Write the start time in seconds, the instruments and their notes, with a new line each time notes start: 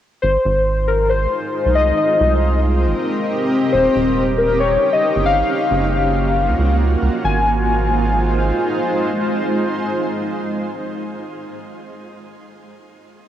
0.22 analog synth bass G#1, ambient pad G#3 D#4 F4 C5, synth keys C5
0.45 analog synth bass G#1
0.88 synth keys A#4
1.09 synth keys C5
1.66 analog synth bass C2
1.75 synth keys D#5
1.97 ambient pad C4 G4 A#4 D#5, synth keys D#5
2.21 analog synth bass C2
2.86 analog synth bass G1
3.73 analog synth bass D#1, ambient pad C#4 D#4, synth keys C5
3.96 analog synth bass D#1
4.38 synth keys A#4
4.60 synth keys C#5
4.93 synth keys D#5
5.16 analog synth bass G1
5.25 synth keys F5
5.49 ambient pad A#3 F4 F#4
5.71 analog synth bass F#1
6.48 analog synth bass C#2
6.59 analog synth bass C#2
7.02 analog synth bass C#2
7.24 analog synth bass G#1, ambient pad G#3 D#4 F4 C5, synth keys G#5